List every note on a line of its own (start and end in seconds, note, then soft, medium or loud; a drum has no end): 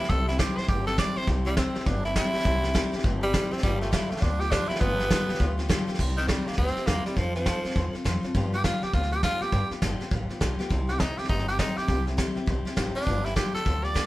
0.00 0.09 F3 soft
0.00 0.11 E4 loud
0.00 snare soft
0.09 0.43 C2 medium
0.09 0.28 C3 medium
0.09 0.28 G3 medium
0.09 0.28 C4 medium
0.09 0.27 E4 medium
0.09 0.26 G4 medium
0.09 0.27 A4 loud
0.09 kick loud
0.09 snare soft
0.27 0.38 C4 medium
0.27 0.41 E4 medium
0.27 0.39 E4 medium
0.27 0.38 G4 medium
0.27 snare soft
0.38 0.57 C3 medium
0.38 0.57 G3 medium
0.38 0.58 C4 medium
0.38 0.57 E4 medium
0.38 0.59 G4 medium
0.38 0.55 G4 medium
0.38 kick medium
0.38 snare loud
0.38 hi-hat pedal loud
0.56 0.67 C4 soft
0.56 0.68 E4 soft
0.56 0.68 G4 medium
0.56 0.68 C5 medium
0.56 muted upright bass stroke medium
0.56 snare soft
0.63 snare soft
0.68 1.02 G1 medium
0.68 0.86 G3 medium
0.68 0.87 C4 medium
0.68 0.86 E4 medium
0.68 0.86 G4 medium
0.68 0.85 G4 medium
0.68 kick loud
0.68 snare soft
0.86 0.97 C4 soft
0.86 0.97 E4 soft
0.86 0.97 G4 medium
0.86 0.97 A4 loud
0.86 snare soft
0.97 1.16 C3 medium
0.97 1.16 G3 medium
0.97 1.16 C4 medium
0.97 1.16 E4 medium
0.97 1.14 G4 medium
0.97 1.19 D5 loud
0.97 kick medium
0.97 snare loud
0.97 hi-hat pedal medium
1.16 1.27 C4 medium
1.16 1.27 E4 medium
1.16 1.27 G4 medium
1.16 1.27 C5 loud
1.16 muted upright bass stroke medium
1.16 snare soft
1.22 snare soft
1.27 1.61 C2 medium
1.27 1.46 C3 medium
1.27 1.46 G3 medium
1.27 1.46 C4 medium
1.27 1.45 E4 medium
1.27 1.44 G4 medium
1.27 kick loud
1.27 snare soft
1.45 1.57 G3 loud
1.45 1.56 C4 soft
1.45 1.57 E4 medium
1.45 1.56 G4 medium
1.45 snare soft
1.56 1.75 C3 medium
1.56 1.75 G3 medium
1.56 1.88 C4 medium
1.56 1.76 C4 medium
1.56 1.75 E4 medium
1.56 1.74 G4 medium
1.56 kick medium
1.56 snare loud
1.56 hi-hat pedal medium
1.75 1.85 C4 soft
1.75 1.86 E4 medium
1.75 1.86 G4 medium
1.75 muted upright bass stroke medium
1.75 snare soft
1.81 snare soft
1.85 2.20 G1 medium
1.85 2.04 G3 medium
1.85 2.05 C4 medium
1.85 2.04 D4 medium
1.85 2.04 E4 medium
1.85 2.03 G4 medium
1.85 kick loud
1.85 snare soft
2.04 2.15 C4 soft
2.04 2.16 E4 medium
2.04 2.16 E4 soft
2.04 2.15 G4 soft
2.04 snare soft
2.15 2.34 C3 medium
2.15 2.34 G3 medium
2.15 2.34 C4 medium
2.15 3.02 E4 loud
2.15 2.34 E4 medium
2.15 2.32 G4 medium
2.15 kick medium
2.15 snare loud
2.15 hi-hat pedal medium
2.33 2.44 C4 soft
2.33 2.44 E4 medium
2.33 2.44 G4 medium
2.33 muted upright bass stroke medium
2.33 snare soft
2.40 snare soft
2.44 2.79 C2 loud
2.44 2.63 C3 medium
2.44 2.63 G3 medium
2.44 2.64 C4 medium
2.44 2.63 E4 medium
2.44 2.61 G4 medium
2.44 kick loud
2.44 snare soft
2.62 2.74 C4 medium
2.62 2.74 E4 medium
2.62 2.74 G4 medium
2.62 snare soft
2.74 2.93 C3 loud
2.74 2.93 G3 medium
2.74 2.93 C4 medium
2.74 2.92 E4 loud
2.74 2.91 G4 loud
2.74 kick loud
2.74 snare loud
2.74 hi-hat pedal medium
2.92 3.03 C4 soft
2.92 3.04 E4 medium
2.92 3.04 G4 medium
2.92 muted upright bass stroke medium
2.92 snare soft
2.99 snare soft
3.03 3.38 G1 medium
3.03 3.22 G3 medium
3.03 3.22 C4 medium
3.03 3.22 E4 medium
3.03 3.20 G4 medium
3.03 kick loud
3.03 snare soft
3.21 3.54 G3 loud
3.21 3.33 C4 soft
3.21 3.33 E4 soft
3.21 3.33 G4 medium
3.21 snare soft
3.33 3.52 C3 medium
3.33 3.52 G3 medium
3.33 3.52 C4 medium
3.33 3.52 E4 medium
3.33 3.50 G4 medium
3.33 kick medium
3.33 snare loud
3.33 hi-hat pedal medium
3.51 3.63 C4 medium
3.51 3.64 E4 medium
3.51 3.63 G4 medium
3.51 muted upright bass stroke medium
3.51 snare soft
3.58 snare soft
3.62 3.97 G1 medium
3.62 3.81 G2 medium
3.62 3.81 D3 medium
3.62 3.82 F3 medium
3.62 3.81 G3 loud
3.62 3.82 B3 medium
3.62 3.81 F4 medium
3.62 3.80 G4 medium
3.62 kick loud
3.62 snare soft
3.81 3.91 F3 soft
3.81 3.94 A3 medium
3.81 3.92 B3 medium
3.81 3.92 F4 soft
3.81 3.92 G4 medium
3.81 snare soft
3.92 4.10 G2 medium
3.92 4.11 D3 medium
3.92 4.11 F3 medium
3.92 4.11 B3 medium
3.92 4.12 E4 medium
3.92 4.10 F4 medium
3.92 4.09 G4 medium
3.92 kick medium
3.92 snare loud
3.92 hi-hat pedal medium
4.10 4.20 F3 soft
4.10 4.23 A3 medium
4.10 4.21 B3 soft
4.10 4.22 F4 soft
4.10 4.22 G4 medium
4.10 muted upright bass stroke medium
4.10 snare soft
4.17 snare soft
4.21 4.56 D2 medium
4.21 4.40 F3 medium
4.21 4.40 B3 medium
4.21 4.42 D4 loud
4.21 4.39 F4 medium
4.21 4.38 G4 medium
4.21 kick loud
4.21 snare soft
4.39 4.51 F3 soft
4.39 4.51 B3 medium
4.39 4.51 F4 medium
4.39 4.51 G4 medium
4.39 4.52 G4 loud
4.39 snare soft
4.51 4.69 G2 medium
4.51 4.70 D3 medium
4.51 4.70 F3 medium
4.51 4.70 B3 medium
4.51 4.70 D4 loud
4.51 4.69 F4 medium
4.51 4.68 G4 medium
4.51 kick medium
4.51 snare loud
4.51 hi-hat pedal medium
4.69 4.80 F3 medium
4.69 4.80 B3 medium
4.69 4.81 E4 medium
4.69 4.81 F4 medium
4.69 4.80 G4 medium
4.69 muted upright bass stroke medium
4.69 snare soft
4.76 snare soft
4.80 5.15 G1 medium
4.80 4.99 G2 medium
4.80 4.99 D3 medium
4.80 4.99 F3 medium
4.80 5.52 B3 loud
4.80 4.99 B3 medium
4.80 4.98 F4 medium
4.80 4.97 G4 medium
4.80 kick loud
4.80 snare soft
4.98 5.09 F3 soft
4.98 5.10 B3 soft
4.98 5.10 F4 medium
4.98 5.10 G4 medium
4.98 snare soft
5.09 5.28 G2 medium
5.09 5.29 D3 medium
5.09 5.29 F3 medium
5.09 5.29 B3 medium
5.09 5.28 F4 medium
5.09 5.27 G4 medium
5.09 kick medium
5.09 snare loud
5.09 hi-hat pedal medium
5.28 5.38 F3 medium
5.28 5.39 B3 soft
5.28 5.40 F4 medium
5.28 5.39 G4 medium
5.28 muted upright bass stroke medium
5.28 snare soft
5.35 snare soft
5.39 5.73 D2 medium
5.39 5.58 F3 medium
5.39 5.58 B3 medium
5.39 5.58 F4 medium
5.39 5.56 G4 medium
5.39 kick loud
5.39 snare soft
5.58 5.68 F3 medium
5.58 5.69 B3 medium
5.58 5.69 F4 medium
5.58 5.69 G4 medium
5.58 snare soft
5.69 5.87 G2 loud
5.69 5.88 D3 medium
5.69 5.88 F3 loud
5.69 5.88 B3 medium
5.69 5.87 F4 medium
5.69 5.86 G4 loud
5.69 kick medium
5.69 snare loud
5.69 hi-hat pedal medium
5.87 5.99 F3 medium
5.87 5.99 B3 medium
5.87 5.99 F4 medium
5.87 5.98 G4 medium
5.87 muted upright bass stroke medium
5.87 snare soft
5.94 snare soft
5.98 6.32 C2 medium
5.98 6.17 C3 medium
5.98 6.17 G3 medium
5.98 6.17 C4 medium
5.98 6.17 E4 medium
5.98 6.15 G4 medium
5.98 kick loud
5.98 snare soft
5.98 crash loud
6.17 6.30 D#3 medium
6.17 6.28 C4 soft
6.17 6.28 E4 soft
6.17 6.28 G4 medium
6.17 snare soft
6.28 6.46 C3 medium
6.28 6.48 G3 medium
6.28 6.47 G3 medium
6.28 6.47 C4 medium
6.28 6.46 E4 medium
6.28 6.44 G4 medium
6.28 kick medium
6.28 snare loud
6.28 hi-hat pedal medium
6.46 6.57 A#3 medium
6.46 6.56 C4 soft
6.46 6.57 E4 soft
6.46 6.57 G4 soft
6.46 muted upright bass stroke medium
6.46 snare soft
6.53 6.75 G3 medium
6.53 snare soft
6.57 6.73 D2 medium
6.57 6.76 C4 medium
6.57 6.88 C4 loud
6.57 6.76 E4 medium
6.57 6.74 G4 medium
6.57 kick loud
6.57 snare soft
6.67 snare soft
6.76 6.86 C4 soft
6.76 6.86 E4 soft
6.76 6.87 G4 soft
6.76 muted upright bass stroke medium
6.76 snare soft
6.86 7.03 E2 medium
6.86 7.05 C3 medium
6.86 7.05 G3 medium
6.86 7.05 A#3 loud
6.86 7.05 C4 medium
6.86 7.05 E4 medium
6.86 7.03 G4 medium
6.86 kick medium
6.86 snare loud
6.86 hi-hat pedal medium
7.04 7.19 G3 medium
7.04 7.15 C4 soft
7.04 7.17 E4 medium
7.04 7.16 G4 medium
7.04 muted upright bass stroke medium
7.04 snare soft
7.16 7.50 F2 medium
7.16 7.34 F3 medium
7.16 7.35 F3 medium
7.16 7.35 C4 medium
7.16 7.35 F4 medium
7.16 7.33 A4 medium
7.16 kick loud
7.16 snare soft
7.35 7.92 F3 loud
7.35 7.45 C4 soft
7.35 7.46 F4 medium
7.35 7.46 A4 medium
7.35 snare soft
7.46 7.64 F3 medium
7.46 7.65 C4 medium
7.46 7.64 F4 medium
7.46 7.62 A4 medium
7.46 kick medium
7.46 snare loud
7.46 hi-hat pedal medium
7.63 7.75 C4 soft
7.63 7.76 F4 soft
7.63 7.75 A4 soft
7.63 muted upright bass stroke medium
7.63 snare soft
7.70 snare soft
7.75 7.91 E2 medium
7.75 7.93 F3 medium
7.75 7.94 C4 medium
7.75 7.94 F4 medium
7.75 7.92 A4 medium
7.75 kick loud
7.75 snare soft
7.93 8.04 C4 soft
7.93 8.05 F4 medium
7.93 8.04 A4 medium
7.93 muted upright bass stroke medium
7.93 snare soft
8.04 8.21 F2 medium
8.04 8.23 F3 medium
8.04 8.24 C4 medium
8.04 8.23 F4 medium
8.04 8.22 A4 loud
8.04 kick medium
8.04 snare loud
8.04 hi-hat pedal medium
8.23 8.35 C4 medium
8.23 8.35 F4 medium
8.23 8.34 A4 medium
8.23 muted upright bass stroke medium
8.23 snare soft
8.34 8.53 G2 medium
8.34 8.68 G2 medium
8.34 8.53 D3 medium
8.34 8.53 F3 medium
8.34 8.53 B3 medium
8.34 8.52 F4 medium
8.34 8.51 G4 loud
8.34 kick loud
8.34 snare soft
8.53 8.63 F3 soft
8.53 8.64 B3 soft
8.53 8.64 F4 soft
8.53 8.64 G4 medium
8.53 8.64 G4 loud
8.53 snare soft
8.64 8.82 G2 medium
8.64 8.82 D3 medium
8.64 8.83 F3 medium
8.64 8.83 B3 medium
8.64 8.85 F4 medium
8.64 8.82 F4 medium
8.64 8.80 G4 medium
8.64 kick medium
8.64 snare loud
8.64 hi-hat pedal medium
8.82 8.92 F3 soft
8.82 8.93 B3 soft
8.82 8.94 F4 medium
8.82 8.93 G4 medium
8.82 muted upright bass stroke medium
8.82 snare soft
8.93 9.27 D2 medium
8.93 9.12 F3 medium
8.93 9.12 B3 medium
8.93 9.11 F4 medium
8.93 9.10 G4 medium
8.93 kick loud
8.93 snare soft
9.03 snare soft
9.11 9.23 F3 soft
9.11 9.23 B3 soft
9.11 9.23 F4 soft
9.11 9.23 G4 medium
9.11 9.23 G4 loud
9.11 snare soft
9.23 9.41 G2 medium
9.23 9.42 D3 medium
9.23 9.42 F3 medium
9.23 9.42 B3 medium
9.23 9.43 F4 loud
9.23 9.41 F4 medium
9.23 9.40 G4 medium
9.23 kick medium
9.23 snare loud
9.23 hi-hat pedal medium
9.41 9.52 F3 medium
9.41 9.52 B3 soft
9.41 9.53 F4 medium
9.41 9.52 G4 medium
9.41 9.70 G4 loud
9.41 muted upright bass stroke medium
9.41 snare soft
9.52 9.71 G2 medium
9.52 9.65 G2 loud
9.52 9.71 D3 medium
9.52 9.71 F3 medium
9.52 9.71 B3 medium
9.52 9.70 F4 medium
9.52 9.69 G4 medium
9.52 kick loud
9.52 snare soft
9.70 9.81 F3 soft
9.70 9.82 B3 soft
9.70 9.82 F4 medium
9.70 9.81 G4 medium
9.70 muted upright bass stroke medium
9.70 snare soft
9.82 9.98 G1 medium
9.82 10.00 G2 medium
9.82 10.00 D3 loud
9.82 10.01 F3 medium
9.82 10.01 B3 loud
9.82 10.00 F4 medium
9.82 9.99 G4 loud
9.82 kick medium
9.82 snare loud
9.82 hi-hat pedal medium
10.00 10.09 F3 soft
10.00 10.11 B3 medium
10.00 10.12 F4 medium
10.00 10.11 G4 medium
10.00 muted upright bass stroke medium
10.00 snare soft
10.11 10.27 A1 medium
10.11 10.29 F3 medium
10.11 10.30 B3 medium
10.11 10.29 F4 medium
10.11 10.28 G4 medium
10.11 kick loud
10.11 snare soft
10.29 10.40 F3 soft
10.29 10.41 B3 soft
10.29 10.41 F4 medium
10.29 10.41 G4 medium
10.29 muted upright bass stroke medium
10.29 snare soft
10.41 10.57 B1 medium
10.41 10.59 G2 medium
10.41 10.59 D3 medium
10.41 10.60 F3 medium
10.41 10.60 B3 medium
10.41 10.59 F4 medium
10.41 10.58 G4 medium
10.41 kick medium
10.41 snare loud
10.41 hi-hat pedal medium
10.59 10.70 F3 medium
10.59 10.70 B3 medium
10.59 10.71 F4 medium
10.59 10.70 G4 medium
10.59 muted upright bass stroke medium
10.59 snare soft
10.69 11.04 C2 loud
10.69 10.88 C3 medium
10.69 10.89 G3 medium
10.69 10.89 C4 medium
10.69 10.88 E4 medium
10.69 10.86 G4 medium
10.69 kick loud
10.69 snare soft
10.87 10.99 C4 soft
10.87 10.99 E4 soft
10.87 10.99 G4 medium
10.87 11.01 G4 loud
10.87 snare soft
10.99 11.18 C3 medium
10.99 11.18 G3 medium
10.99 11.18 C4 medium
10.99 11.20 D#4 medium
10.99 11.18 E4 medium
10.99 11.16 G4 medium
10.99 kick medium
10.99 snare loud
10.99 hi-hat pedal medium
11.18 11.28 C4 soft
11.18 11.29 E4 soft
11.18 11.29 G4 medium
11.18 muted upright bass stroke medium
11.18 snare soft
11.24 snare soft
11.29 11.63 G1 medium
11.29 11.47 G3 medium
11.29 11.48 C4 medium
11.29 11.47 D#4 medium
11.29 11.48 E4 medium
11.29 11.46 G4 medium
11.29 kick loud
11.29 snare soft
11.39 snare soft
11.47 11.58 C4 soft
11.47 11.58 E4 soft
11.47 11.58 G4 medium
11.47 11.59 G4 loud
11.47 snare soft
11.58 11.77 C3 medium
11.58 11.77 G3 medium
11.58 11.77 C4 medium
11.58 11.78 D#4 medium
11.58 11.77 E4 medium
11.58 11.75 G4 medium
11.58 kick medium
11.58 snare loud
11.58 hi-hat pedal medium
11.76 11.88 C4 soft
11.76 11.88 E4 medium
11.76 11.88 G4 medium
11.76 12.06 G4 loud
11.76 muted upright bass stroke medium
11.76 snare soft
11.88 12.22 C2 medium
11.88 12.06 C3 medium
11.88 12.07 G3 medium
11.88 12.07 C4 medium
11.88 12.06 E4 medium
11.88 12.04 G4 medium
11.88 kick loud
11.88 snare soft
12.05 12.17 C4 soft
12.05 12.18 E4 medium
12.05 12.17 G4 medium
12.05 snare soft
12.17 12.36 C3 medium
12.17 12.36 G3 medium
12.17 12.37 C4 medium
12.17 12.35 E4 medium
12.17 12.34 G4 loud
12.17 kick medium
12.17 snare loud
12.17 hi-hat pedal medium
12.35 12.46 C4 medium
12.35 12.47 E4 medium
12.35 12.47 G4 medium
12.35 muted upright bass stroke medium
12.35 snare soft
12.46 12.63 B1 medium
12.46 12.65 G3 medium
12.46 12.66 C4 medium
12.46 12.66 E4 medium
12.46 12.64 G4 medium
12.46 kick loud
12.46 snare soft
12.65 12.76 C4 soft
12.65 12.76 E4 medium
12.65 12.76 G4 medium
12.65 muted upright bass stroke medium
12.65 snare soft
12.76 12.93 A1 medium
12.76 12.95 C3 medium
12.76 12.95 G3 medium
12.76 12.96 C4 medium
12.76 12.95 E4 loud
12.76 12.94 G4 medium
12.76 kick medium
12.76 snare loud
12.76 hi-hat pedal medium
12.95 13.07 C4 soft
12.95 13.27 D4 loud
12.95 13.07 E4 medium
12.95 13.06 G4 medium
12.95 muted upright bass stroke medium
12.95 snare soft
13.01 snare soft
13.06 13.40 G1 loud
13.06 13.25 G2 medium
13.06 13.25 D3 medium
13.06 13.25 F3 medium
13.06 13.25 B3 medium
13.06 13.24 F4 medium
13.06 13.23 G4 medium
13.06 kick loud
13.06 snare soft
13.24 13.35 F3 soft
13.24 13.35 B3 medium
13.24 13.35 E4 loud
13.24 13.36 F4 medium
13.24 13.36 G4 medium
13.24 snare soft
13.35 13.54 G2 medium
13.35 13.54 D3 medium
13.35 13.54 F3 medium
13.35 13.54 B3 medium
13.35 13.53 F4 medium
13.35 13.54 G4 medium
13.35 13.52 G4 medium
13.35 kick medium
13.35 snare loud
13.35 hi-hat pedal medium
13.53 13.64 F3 soft
13.53 13.65 B3 soft
13.53 13.65 F4 soft
13.53 13.65 G4 medium
13.53 13.85 A4 medium
13.53 muted upright bass stroke medium
13.53 snare soft
13.65 13.99 D2 medium
13.65 13.84 F3 medium
13.65 13.84 B3 medium
13.65 13.83 F4 medium
13.65 13.81 G4 medium
13.65 kick loud
13.65 snare soft
13.83 13.94 F3 soft
13.83 13.94 B3 soft
13.83 13.94 F4 soft
13.83 13.94 G4 medium
13.83 14.06 D5 loud
13.83 snare soft
13.94 14.06 G2 medium
13.94 14.06 D3 medium
13.94 14.06 F3 medium
13.94 14.06 B3 medium
13.94 14.06 F4 medium
13.94 14.06 G4 medium
13.94 kick medium
13.94 snare loud
13.94 hi-hat pedal medium